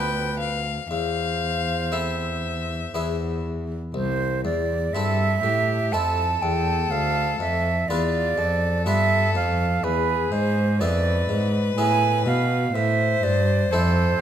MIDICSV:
0, 0, Header, 1, 5, 480
1, 0, Start_track
1, 0, Key_signature, 0, "minor"
1, 0, Tempo, 1016949
1, 424, Time_signature, 3, 2, 24, 8
1, 1863, Tempo, 988468
1, 2823, Tempo, 972447
1, 6913, End_track
2, 0, Start_track
2, 0, Title_t, "Flute"
2, 0, Program_c, 0, 73
2, 0, Note_on_c, 0, 71, 72
2, 280, Note_off_c, 0, 71, 0
2, 425, Note_on_c, 0, 72, 70
2, 1608, Note_off_c, 0, 72, 0
2, 1866, Note_on_c, 0, 72, 85
2, 2089, Note_off_c, 0, 72, 0
2, 2104, Note_on_c, 0, 74, 83
2, 2342, Note_on_c, 0, 76, 92
2, 2349, Note_off_c, 0, 74, 0
2, 2824, Note_on_c, 0, 81, 89
2, 2831, Note_off_c, 0, 76, 0
2, 3067, Note_on_c, 0, 79, 86
2, 3074, Note_off_c, 0, 81, 0
2, 3308, Note_on_c, 0, 77, 91
2, 3315, Note_off_c, 0, 79, 0
2, 3550, Note_off_c, 0, 77, 0
2, 3554, Note_on_c, 0, 76, 90
2, 3791, Note_on_c, 0, 74, 101
2, 3798, Note_off_c, 0, 76, 0
2, 4269, Note_off_c, 0, 74, 0
2, 4272, Note_on_c, 0, 76, 102
2, 4507, Note_off_c, 0, 76, 0
2, 4515, Note_on_c, 0, 77, 82
2, 4754, Note_on_c, 0, 71, 93
2, 4761, Note_off_c, 0, 77, 0
2, 4991, Note_on_c, 0, 72, 92
2, 4999, Note_off_c, 0, 71, 0
2, 5230, Note_on_c, 0, 74, 93
2, 5238, Note_off_c, 0, 72, 0
2, 5574, Note_off_c, 0, 74, 0
2, 5712, Note_on_c, 0, 80, 96
2, 5933, Note_off_c, 0, 80, 0
2, 5954, Note_on_c, 0, 77, 92
2, 6190, Note_on_c, 0, 76, 90
2, 6197, Note_off_c, 0, 77, 0
2, 6431, Note_on_c, 0, 74, 98
2, 6439, Note_off_c, 0, 76, 0
2, 6667, Note_on_c, 0, 72, 95
2, 6674, Note_off_c, 0, 74, 0
2, 6913, Note_off_c, 0, 72, 0
2, 6913, End_track
3, 0, Start_track
3, 0, Title_t, "Violin"
3, 0, Program_c, 1, 40
3, 0, Note_on_c, 1, 79, 83
3, 182, Note_off_c, 1, 79, 0
3, 184, Note_on_c, 1, 77, 85
3, 421, Note_off_c, 1, 77, 0
3, 422, Note_on_c, 1, 77, 96
3, 911, Note_on_c, 1, 76, 76
3, 918, Note_off_c, 1, 77, 0
3, 1629, Note_off_c, 1, 76, 0
3, 2345, Note_on_c, 1, 69, 75
3, 2567, Note_off_c, 1, 69, 0
3, 2579, Note_on_c, 1, 67, 68
3, 2821, Note_on_c, 1, 69, 90
3, 2828, Note_off_c, 1, 67, 0
3, 3791, Note_off_c, 1, 69, 0
3, 3796, Note_on_c, 1, 65, 80
3, 4035, Note_on_c, 1, 69, 78
3, 4043, Note_off_c, 1, 65, 0
3, 4753, Note_on_c, 1, 68, 71
3, 4761, Note_off_c, 1, 69, 0
3, 5228, Note_off_c, 1, 68, 0
3, 5231, Note_on_c, 1, 71, 97
3, 6168, Note_off_c, 1, 71, 0
3, 6188, Note_on_c, 1, 72, 97
3, 6672, Note_on_c, 1, 69, 85
3, 6679, Note_off_c, 1, 72, 0
3, 6910, Note_off_c, 1, 69, 0
3, 6913, End_track
4, 0, Start_track
4, 0, Title_t, "Harpsichord"
4, 0, Program_c, 2, 6
4, 0, Note_on_c, 2, 38, 60
4, 0, Note_on_c, 2, 59, 43
4, 0, Note_on_c, 2, 65, 42
4, 0, Note_on_c, 2, 71, 44
4, 295, Note_off_c, 2, 59, 0
4, 296, Note_off_c, 2, 65, 0
4, 297, Note_off_c, 2, 71, 0
4, 406, Note_off_c, 2, 38, 0
4, 429, Note_on_c, 2, 40, 49
4, 906, Note_on_c, 2, 60, 43
4, 906, Note_on_c, 2, 64, 42
4, 910, Note_on_c, 2, 69, 43
4, 1251, Note_off_c, 2, 64, 0
4, 1252, Note_off_c, 2, 60, 0
4, 1254, Note_off_c, 2, 69, 0
4, 1370, Note_off_c, 2, 40, 0
4, 1390, Note_on_c, 2, 59, 33
4, 1391, Note_on_c, 2, 40, 43
4, 1394, Note_on_c, 2, 64, 38
4, 1394, Note_on_c, 2, 68, 35
4, 1752, Note_off_c, 2, 40, 0
4, 1847, Note_off_c, 2, 59, 0
4, 1849, Note_off_c, 2, 64, 0
4, 1849, Note_off_c, 2, 68, 0
4, 1861, Note_on_c, 2, 36, 59
4, 2084, Note_off_c, 2, 36, 0
4, 2106, Note_on_c, 2, 40, 53
4, 2326, Note_off_c, 2, 40, 0
4, 2348, Note_on_c, 2, 43, 54
4, 2349, Note_on_c, 2, 60, 46
4, 2353, Note_on_c, 2, 69, 54
4, 2354, Note_on_c, 2, 64, 45
4, 2567, Note_off_c, 2, 43, 0
4, 2585, Note_on_c, 2, 45, 54
4, 2693, Note_off_c, 2, 60, 0
4, 2695, Note_off_c, 2, 69, 0
4, 2696, Note_off_c, 2, 64, 0
4, 2805, Note_off_c, 2, 45, 0
4, 2827, Note_on_c, 2, 41, 54
4, 2828, Note_on_c, 2, 60, 49
4, 2830, Note_on_c, 2, 64, 47
4, 2831, Note_on_c, 2, 69, 51
4, 3049, Note_off_c, 2, 41, 0
4, 3072, Note_on_c, 2, 40, 50
4, 3176, Note_off_c, 2, 60, 0
4, 3178, Note_off_c, 2, 64, 0
4, 3178, Note_off_c, 2, 69, 0
4, 3292, Note_off_c, 2, 40, 0
4, 3317, Note_on_c, 2, 38, 62
4, 3535, Note_off_c, 2, 38, 0
4, 3553, Note_on_c, 2, 41, 55
4, 3774, Note_off_c, 2, 41, 0
4, 3800, Note_on_c, 2, 40, 62
4, 3800, Note_on_c, 2, 59, 47
4, 3800, Note_on_c, 2, 65, 50
4, 3802, Note_on_c, 2, 71, 55
4, 4017, Note_off_c, 2, 40, 0
4, 4034, Note_on_c, 2, 41, 57
4, 4143, Note_off_c, 2, 59, 0
4, 4143, Note_off_c, 2, 65, 0
4, 4144, Note_off_c, 2, 71, 0
4, 4253, Note_off_c, 2, 41, 0
4, 4273, Note_on_c, 2, 43, 62
4, 4274, Note_on_c, 2, 59, 51
4, 4275, Note_on_c, 2, 65, 45
4, 4277, Note_on_c, 2, 71, 51
4, 4493, Note_off_c, 2, 43, 0
4, 4516, Note_on_c, 2, 41, 60
4, 4618, Note_off_c, 2, 59, 0
4, 4619, Note_off_c, 2, 65, 0
4, 4621, Note_off_c, 2, 71, 0
4, 4734, Note_off_c, 2, 41, 0
4, 4756, Note_on_c, 2, 40, 68
4, 4974, Note_off_c, 2, 40, 0
4, 4993, Note_on_c, 2, 44, 62
4, 5212, Note_off_c, 2, 44, 0
4, 5234, Note_on_c, 2, 41, 64
4, 5235, Note_on_c, 2, 59, 53
4, 5236, Note_on_c, 2, 64, 57
4, 5237, Note_on_c, 2, 68, 57
4, 5453, Note_off_c, 2, 41, 0
4, 5473, Note_on_c, 2, 44, 60
4, 5578, Note_off_c, 2, 59, 0
4, 5579, Note_off_c, 2, 64, 0
4, 5580, Note_off_c, 2, 68, 0
4, 5691, Note_off_c, 2, 44, 0
4, 5713, Note_on_c, 2, 45, 61
4, 5713, Note_on_c, 2, 59, 54
4, 5714, Note_on_c, 2, 64, 50
4, 5716, Note_on_c, 2, 68, 55
4, 5930, Note_off_c, 2, 45, 0
4, 5949, Note_on_c, 2, 47, 65
4, 6056, Note_off_c, 2, 59, 0
4, 6057, Note_off_c, 2, 64, 0
4, 6058, Note_off_c, 2, 68, 0
4, 6169, Note_off_c, 2, 47, 0
4, 6196, Note_on_c, 2, 45, 67
4, 6412, Note_off_c, 2, 45, 0
4, 6431, Note_on_c, 2, 43, 57
4, 6649, Note_off_c, 2, 43, 0
4, 6675, Note_on_c, 2, 41, 63
4, 6676, Note_on_c, 2, 60, 57
4, 6677, Note_on_c, 2, 64, 56
4, 6677, Note_on_c, 2, 69, 57
4, 6889, Note_off_c, 2, 41, 0
4, 6913, Note_off_c, 2, 60, 0
4, 6913, Note_off_c, 2, 64, 0
4, 6913, Note_off_c, 2, 69, 0
4, 6913, End_track
5, 0, Start_track
5, 0, Title_t, "Cello"
5, 0, Program_c, 3, 42
5, 0, Note_on_c, 3, 38, 67
5, 406, Note_off_c, 3, 38, 0
5, 426, Note_on_c, 3, 40, 56
5, 1368, Note_off_c, 3, 40, 0
5, 1386, Note_on_c, 3, 40, 63
5, 1761, Note_off_c, 3, 40, 0
5, 1864, Note_on_c, 3, 36, 67
5, 2105, Note_on_c, 3, 40, 63
5, 2112, Note_off_c, 3, 36, 0
5, 2342, Note_off_c, 3, 40, 0
5, 2345, Note_on_c, 3, 43, 74
5, 2579, Note_off_c, 3, 43, 0
5, 2584, Note_on_c, 3, 45, 65
5, 2825, Note_on_c, 3, 41, 72
5, 2832, Note_off_c, 3, 45, 0
5, 3063, Note_off_c, 3, 41, 0
5, 3066, Note_on_c, 3, 40, 68
5, 3305, Note_off_c, 3, 40, 0
5, 3312, Note_on_c, 3, 38, 73
5, 3548, Note_off_c, 3, 38, 0
5, 3553, Note_on_c, 3, 41, 66
5, 3788, Note_off_c, 3, 41, 0
5, 3794, Note_on_c, 3, 40, 70
5, 4029, Note_off_c, 3, 40, 0
5, 4032, Note_on_c, 3, 41, 75
5, 4271, Note_on_c, 3, 43, 74
5, 4279, Note_off_c, 3, 41, 0
5, 4512, Note_on_c, 3, 41, 76
5, 4519, Note_off_c, 3, 43, 0
5, 4752, Note_off_c, 3, 41, 0
5, 4754, Note_on_c, 3, 40, 67
5, 4988, Note_off_c, 3, 40, 0
5, 4991, Note_on_c, 3, 44, 75
5, 5234, Note_on_c, 3, 41, 78
5, 5241, Note_off_c, 3, 44, 0
5, 5467, Note_off_c, 3, 41, 0
5, 5470, Note_on_c, 3, 44, 78
5, 5704, Note_off_c, 3, 44, 0
5, 5708, Note_on_c, 3, 45, 85
5, 5948, Note_on_c, 3, 47, 76
5, 5955, Note_off_c, 3, 45, 0
5, 6183, Note_off_c, 3, 47, 0
5, 6186, Note_on_c, 3, 45, 78
5, 6422, Note_off_c, 3, 45, 0
5, 6427, Note_on_c, 3, 43, 82
5, 6662, Note_off_c, 3, 43, 0
5, 6666, Note_on_c, 3, 41, 86
5, 6899, Note_off_c, 3, 41, 0
5, 6913, End_track
0, 0, End_of_file